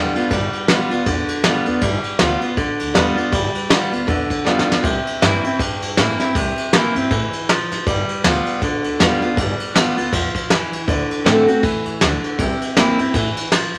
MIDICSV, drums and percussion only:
0, 0, Header, 1, 2, 480
1, 0, Start_track
1, 0, Tempo, 377358
1, 401, Time_signature, 4, 2, 24, 8
1, 17531, End_track
2, 0, Start_track
2, 0, Title_t, "Drums"
2, 197, Note_on_c, 9, 51, 60
2, 324, Note_off_c, 9, 51, 0
2, 389, Note_on_c, 9, 51, 88
2, 392, Note_on_c, 9, 36, 112
2, 516, Note_off_c, 9, 51, 0
2, 519, Note_off_c, 9, 36, 0
2, 673, Note_on_c, 9, 51, 56
2, 800, Note_off_c, 9, 51, 0
2, 869, Note_on_c, 9, 38, 118
2, 869, Note_on_c, 9, 51, 84
2, 996, Note_off_c, 9, 38, 0
2, 996, Note_off_c, 9, 51, 0
2, 1155, Note_on_c, 9, 51, 60
2, 1283, Note_off_c, 9, 51, 0
2, 1348, Note_on_c, 9, 51, 76
2, 1352, Note_on_c, 9, 36, 109
2, 1475, Note_off_c, 9, 51, 0
2, 1480, Note_off_c, 9, 36, 0
2, 1633, Note_on_c, 9, 51, 66
2, 1760, Note_off_c, 9, 51, 0
2, 1827, Note_on_c, 9, 38, 114
2, 1827, Note_on_c, 9, 51, 78
2, 1954, Note_off_c, 9, 38, 0
2, 1954, Note_off_c, 9, 51, 0
2, 2106, Note_on_c, 9, 51, 51
2, 2234, Note_off_c, 9, 51, 0
2, 2304, Note_on_c, 9, 51, 92
2, 2312, Note_on_c, 9, 36, 112
2, 2431, Note_off_c, 9, 51, 0
2, 2439, Note_off_c, 9, 36, 0
2, 2589, Note_on_c, 9, 51, 62
2, 2716, Note_off_c, 9, 51, 0
2, 2785, Note_on_c, 9, 38, 115
2, 2785, Note_on_c, 9, 51, 84
2, 2912, Note_off_c, 9, 38, 0
2, 2912, Note_off_c, 9, 51, 0
2, 3072, Note_on_c, 9, 51, 63
2, 3199, Note_off_c, 9, 51, 0
2, 3271, Note_on_c, 9, 51, 82
2, 3272, Note_on_c, 9, 36, 113
2, 3398, Note_off_c, 9, 51, 0
2, 3399, Note_off_c, 9, 36, 0
2, 3556, Note_on_c, 9, 51, 70
2, 3683, Note_off_c, 9, 51, 0
2, 3752, Note_on_c, 9, 38, 116
2, 3752, Note_on_c, 9, 51, 86
2, 3879, Note_off_c, 9, 38, 0
2, 3879, Note_off_c, 9, 51, 0
2, 4035, Note_on_c, 9, 51, 53
2, 4162, Note_off_c, 9, 51, 0
2, 4230, Note_on_c, 9, 36, 127
2, 4230, Note_on_c, 9, 51, 98
2, 4357, Note_off_c, 9, 36, 0
2, 4358, Note_off_c, 9, 51, 0
2, 4514, Note_on_c, 9, 51, 61
2, 4642, Note_off_c, 9, 51, 0
2, 4710, Note_on_c, 9, 38, 119
2, 4710, Note_on_c, 9, 51, 88
2, 4838, Note_off_c, 9, 38, 0
2, 4838, Note_off_c, 9, 51, 0
2, 4999, Note_on_c, 9, 51, 58
2, 5126, Note_off_c, 9, 51, 0
2, 5189, Note_on_c, 9, 36, 106
2, 5191, Note_on_c, 9, 51, 73
2, 5316, Note_off_c, 9, 36, 0
2, 5318, Note_off_c, 9, 51, 0
2, 5474, Note_on_c, 9, 36, 84
2, 5475, Note_on_c, 9, 51, 60
2, 5601, Note_off_c, 9, 36, 0
2, 5602, Note_off_c, 9, 51, 0
2, 5677, Note_on_c, 9, 38, 66
2, 5805, Note_off_c, 9, 38, 0
2, 5838, Note_on_c, 9, 38, 71
2, 5966, Note_off_c, 9, 38, 0
2, 6000, Note_on_c, 9, 38, 92
2, 6127, Note_off_c, 9, 38, 0
2, 6153, Note_on_c, 9, 36, 115
2, 6158, Note_on_c, 9, 51, 88
2, 6280, Note_off_c, 9, 36, 0
2, 6285, Note_off_c, 9, 51, 0
2, 6445, Note_on_c, 9, 51, 63
2, 6573, Note_off_c, 9, 51, 0
2, 6643, Note_on_c, 9, 38, 112
2, 6643, Note_on_c, 9, 51, 88
2, 6770, Note_off_c, 9, 38, 0
2, 6770, Note_off_c, 9, 51, 0
2, 6921, Note_on_c, 9, 51, 61
2, 7049, Note_off_c, 9, 51, 0
2, 7116, Note_on_c, 9, 36, 113
2, 7121, Note_on_c, 9, 51, 85
2, 7243, Note_off_c, 9, 36, 0
2, 7249, Note_off_c, 9, 51, 0
2, 7406, Note_on_c, 9, 51, 69
2, 7533, Note_off_c, 9, 51, 0
2, 7598, Note_on_c, 9, 38, 125
2, 7598, Note_on_c, 9, 51, 90
2, 7725, Note_off_c, 9, 38, 0
2, 7725, Note_off_c, 9, 51, 0
2, 7882, Note_on_c, 9, 38, 28
2, 7882, Note_on_c, 9, 51, 62
2, 8009, Note_off_c, 9, 38, 0
2, 8009, Note_off_c, 9, 51, 0
2, 8079, Note_on_c, 9, 36, 120
2, 8082, Note_on_c, 9, 51, 91
2, 8206, Note_off_c, 9, 36, 0
2, 8209, Note_off_c, 9, 51, 0
2, 8364, Note_on_c, 9, 51, 70
2, 8491, Note_off_c, 9, 51, 0
2, 8560, Note_on_c, 9, 38, 116
2, 8560, Note_on_c, 9, 51, 82
2, 8687, Note_off_c, 9, 38, 0
2, 8687, Note_off_c, 9, 51, 0
2, 8847, Note_on_c, 9, 51, 67
2, 8974, Note_off_c, 9, 51, 0
2, 9040, Note_on_c, 9, 51, 86
2, 9042, Note_on_c, 9, 36, 116
2, 9167, Note_off_c, 9, 51, 0
2, 9169, Note_off_c, 9, 36, 0
2, 9323, Note_on_c, 9, 51, 66
2, 9450, Note_off_c, 9, 51, 0
2, 9529, Note_on_c, 9, 38, 114
2, 9529, Note_on_c, 9, 51, 75
2, 9656, Note_off_c, 9, 38, 0
2, 9656, Note_off_c, 9, 51, 0
2, 9814, Note_on_c, 9, 38, 29
2, 9814, Note_on_c, 9, 51, 58
2, 9942, Note_off_c, 9, 38, 0
2, 9942, Note_off_c, 9, 51, 0
2, 10006, Note_on_c, 9, 36, 120
2, 10010, Note_on_c, 9, 51, 78
2, 10133, Note_off_c, 9, 36, 0
2, 10138, Note_off_c, 9, 51, 0
2, 10288, Note_on_c, 9, 51, 65
2, 10415, Note_off_c, 9, 51, 0
2, 10484, Note_on_c, 9, 38, 118
2, 10484, Note_on_c, 9, 51, 85
2, 10611, Note_off_c, 9, 38, 0
2, 10611, Note_off_c, 9, 51, 0
2, 10764, Note_on_c, 9, 51, 58
2, 10891, Note_off_c, 9, 51, 0
2, 10962, Note_on_c, 9, 51, 80
2, 10963, Note_on_c, 9, 36, 113
2, 11089, Note_off_c, 9, 51, 0
2, 11090, Note_off_c, 9, 36, 0
2, 11245, Note_on_c, 9, 51, 61
2, 11372, Note_off_c, 9, 51, 0
2, 11449, Note_on_c, 9, 38, 124
2, 11449, Note_on_c, 9, 51, 84
2, 11576, Note_off_c, 9, 38, 0
2, 11576, Note_off_c, 9, 51, 0
2, 11723, Note_on_c, 9, 51, 54
2, 11850, Note_off_c, 9, 51, 0
2, 11921, Note_on_c, 9, 36, 117
2, 11928, Note_on_c, 9, 51, 87
2, 12049, Note_off_c, 9, 36, 0
2, 12055, Note_off_c, 9, 51, 0
2, 12207, Note_on_c, 9, 51, 66
2, 12334, Note_off_c, 9, 51, 0
2, 12409, Note_on_c, 9, 38, 120
2, 12409, Note_on_c, 9, 51, 86
2, 12536, Note_off_c, 9, 38, 0
2, 12536, Note_off_c, 9, 51, 0
2, 12690, Note_on_c, 9, 51, 63
2, 12817, Note_off_c, 9, 51, 0
2, 12881, Note_on_c, 9, 36, 115
2, 12883, Note_on_c, 9, 51, 93
2, 13008, Note_off_c, 9, 36, 0
2, 13010, Note_off_c, 9, 51, 0
2, 13162, Note_on_c, 9, 36, 81
2, 13165, Note_on_c, 9, 51, 65
2, 13289, Note_off_c, 9, 36, 0
2, 13292, Note_off_c, 9, 51, 0
2, 13360, Note_on_c, 9, 38, 115
2, 13360, Note_on_c, 9, 51, 83
2, 13487, Note_off_c, 9, 38, 0
2, 13487, Note_off_c, 9, 51, 0
2, 13646, Note_on_c, 9, 51, 59
2, 13773, Note_off_c, 9, 51, 0
2, 13839, Note_on_c, 9, 36, 112
2, 13843, Note_on_c, 9, 51, 85
2, 13966, Note_off_c, 9, 36, 0
2, 13970, Note_off_c, 9, 51, 0
2, 14129, Note_on_c, 9, 51, 61
2, 14256, Note_off_c, 9, 51, 0
2, 14323, Note_on_c, 9, 38, 118
2, 14323, Note_on_c, 9, 51, 80
2, 14451, Note_off_c, 9, 38, 0
2, 14451, Note_off_c, 9, 51, 0
2, 14604, Note_on_c, 9, 51, 61
2, 14732, Note_off_c, 9, 51, 0
2, 14797, Note_on_c, 9, 36, 115
2, 14798, Note_on_c, 9, 51, 87
2, 14924, Note_off_c, 9, 36, 0
2, 14925, Note_off_c, 9, 51, 0
2, 15080, Note_on_c, 9, 51, 66
2, 15208, Note_off_c, 9, 51, 0
2, 15279, Note_on_c, 9, 38, 118
2, 15279, Note_on_c, 9, 51, 85
2, 15406, Note_off_c, 9, 38, 0
2, 15406, Note_off_c, 9, 51, 0
2, 15567, Note_on_c, 9, 51, 60
2, 15694, Note_off_c, 9, 51, 0
2, 15757, Note_on_c, 9, 36, 116
2, 15760, Note_on_c, 9, 51, 93
2, 15885, Note_off_c, 9, 36, 0
2, 15888, Note_off_c, 9, 51, 0
2, 16046, Note_on_c, 9, 51, 71
2, 16173, Note_off_c, 9, 51, 0
2, 16239, Note_on_c, 9, 38, 118
2, 16239, Note_on_c, 9, 51, 86
2, 16366, Note_off_c, 9, 38, 0
2, 16366, Note_off_c, 9, 51, 0
2, 16522, Note_on_c, 9, 51, 63
2, 16649, Note_off_c, 9, 51, 0
2, 16714, Note_on_c, 9, 51, 93
2, 16716, Note_on_c, 9, 36, 123
2, 16841, Note_off_c, 9, 51, 0
2, 16843, Note_off_c, 9, 36, 0
2, 17002, Note_on_c, 9, 51, 73
2, 17129, Note_off_c, 9, 51, 0
2, 17195, Note_on_c, 9, 38, 116
2, 17195, Note_on_c, 9, 51, 93
2, 17322, Note_off_c, 9, 38, 0
2, 17322, Note_off_c, 9, 51, 0
2, 17476, Note_on_c, 9, 51, 55
2, 17531, Note_off_c, 9, 51, 0
2, 17531, End_track
0, 0, End_of_file